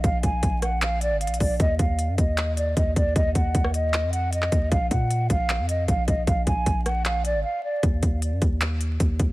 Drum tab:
HH |x-----x-----x-----x-----x-----x-----x-x-x-o-----|x-----x-----x-----x-----x-----x-----x-----x-----|x-----x-----x-----x-----x-----x-----x-----x-----|x-----x-----x-----x-----x-----x-----x-----x-----|
CP |------------------------x-----------------------|------------------------x-----------------------|------------------------x--------------x--------|------------------------x-----------------------|
SD |------------------r-----------------------------|------------------------------------------------|---------------r--------------------------------|------------------------------------------------|
BD |o-----o-----o-----------------------------o-----|o-----o-----------o-----------------o-----o-----|o-----o-----o-----------------------------o-----|o-----o-----------o-----------------o-----o-----|

HH |x-----x-----x-----x-----x-----x-----------------|x-----x-----x-----x-----x-----x-----x-----x-----|
CP |------------------------x-----------------------|------------------------x-----------------------|
SD |------------------r-----------------------------|------------------------------------------------|
BD |o-----o-----o-----------------------------------|o-----o-----------o-----------------o-----o-----|